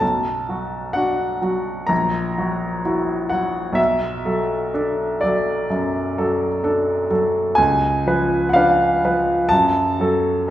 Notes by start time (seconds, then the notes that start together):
0.00 B1 A5
0.49 F#3 F#4
0.93 D4 F#4 F#5
1.42 F#3 F#4
1.87 A#1 A#5
2.38 F#3 F#4
2.85 E4 F#4
3.29 F#3 F#4 F#5
3.73 B1 E5
4.26 F#3 A4
4.74 D4 A4
5.21 F#3 A4 D5
5.70 F#2
6.18 F#3 A4
6.64 D4 A4
7.10 F#3 A4
7.55 C#2 G#5
8.07 F3 B4
8.49 F#5
8.53 D4 B4 F5
9.04 F3 B4
9.49 F#2 A5
10.00 F#3 A4